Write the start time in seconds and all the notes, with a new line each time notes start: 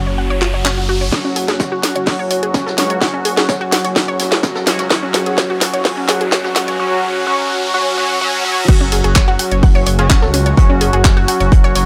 Already playing: F#1 F#3 C#4 F#4, riser
0.07 C#5
0.18 F#5
0.30 C#5
0.42 F4, clap
0.54 C#5
0.65 C#4, clap
0.78 F#5
0.89 F#4
1.01 C#5
1.12 F#1 F#3 C#4 F#4, kick, snare, closed hi-hat, riser
1.25 C#4
1.36 G#4, closed hi-hat, open hi-hat
1.48 F#1 G#4, snare, closed hi-hat
1.60 C#5, kick, snare, closed hi-hat
1.72 F#4
1.83 F#5, snare, closed hi-hat, open hi-hat
1.96 F#1 C#5, closed hi-hat
2.06 F#5, kick, snare, closed hi-hat, open hi-hat
2.19 C#5
2.31 F#1 C#5, closed hi-hat, open hi-hat
2.43 G#4, closed hi-hat
2.54 C#4, kick, snare, closed hi-hat
2.66 C#2 A4, snare
2.78 F#3 C#4 F#4, snare, closed hi-hat, open hi-hat
2.90 C#5, closed hi-hat
3.01 F#1 F#3 C#4 F#4, kick, snare, closed hi-hat
3.14 C#4
3.25 G#4, closed hi-hat, open hi-hat
3.37 F#1 G#4, snare, closed hi-hat
3.49 C#5, kick, snare, closed hi-hat
3.61 F#4
3.72 F#5, snare, closed hi-hat, open hi-hat
3.84 F#1 C#5, closed hi-hat
3.96 F#5, kick, snare, closed hi-hat
4.08 C#5
4.20 F#1 C#5, snare, closed hi-hat, open hi-hat
4.32 G#4, snare, closed hi-hat
4.43 C#4, kick, snare, closed hi-hat
4.55 C#2 A4, snare
4.67 F#3 C#4 F#4, snare, closed hi-hat, open hi-hat
4.79 C#5, snare, closed hi-hat
4.90 F#1 F#3 C#4 F#4, kick, snare, closed hi-hat
5.03 C#4
5.14 G#4, snare, closed hi-hat, open hi-hat
5.26 F#1 G#4, closed hi-hat
5.38 C#5, kick, snare, closed hi-hat
5.50 F#4
5.61 F#5, snare, closed hi-hat, open hi-hat
5.74 F#1 C#5, closed hi-hat
5.85 F#3 C#4 F#4, kick, snare, closed hi-hat, open hi-hat
5.97 C#4
6.09 F#1 G#4, snare, closed hi-hat, open hi-hat
6.21 G#4, closed hi-hat
6.32 C#5, kick, snare, closed hi-hat
6.44 C#2 F#4, snare
6.56 F#5, snare, closed hi-hat, open hi-hat
6.68 C#5, closed hi-hat
6.79 F#3 C#4 F#4
7.27 F#3 C#4 F#4
7.74 F#3 C#4 F#4
7.98 F#3 C#4 F#4
8.21 F#3 C#4 F#4
8.45 F#3 C#4 F#4
8.68 F#1 F#3 C#4 F#4 F#5, kick, closed hi-hat, crash
8.81 C#4 C#5
8.92 G#4 G#5, closed hi-hat, open hi-hat
9.04 F#1 G#4 G#5, closed hi-hat
9.16 C#5 C#6, kick, snare, clap, closed hi-hat
9.28 F#4 F#5
9.39 F#5 F#6, closed hi-hat, open hi-hat
9.52 F#1 C#5 C#6, closed hi-hat
9.63 F#5 F#6, kick, closed hi-hat, open hi-hat
9.75 C#5 C#6
9.86 F#1 C#5 C#6, closed hi-hat, open hi-hat
9.99 F#3 C#4 F#4 G#4 G#5, closed hi-hat
10.09 C#4 C#5, kick, snare, clap, closed hi-hat
10.22 C#2 A4 A5, snare
10.34 C#4 C#5, closed hi-hat, open hi-hat
10.46 C#5 C#6, closed hi-hat
10.57 F#1 F#3 C#4 F#4 F#5, kick, closed hi-hat
10.70 C#4 C#5
10.81 G#4 G#5, closed hi-hat, open hi-hat
10.93 F#1 G#4 G#5, closed hi-hat
11.05 C#5 C#6, kick, snare, clap, closed hi-hat
11.17 F#4 F#5
11.28 F#5 F#6, closed hi-hat, open hi-hat
11.40 F#1 C#5 C#6, closed hi-hat
11.52 F#5 F#6, kick, closed hi-hat
11.64 C#5 C#6
11.75 F#1 C#5 C#6, snare, closed hi-hat, open hi-hat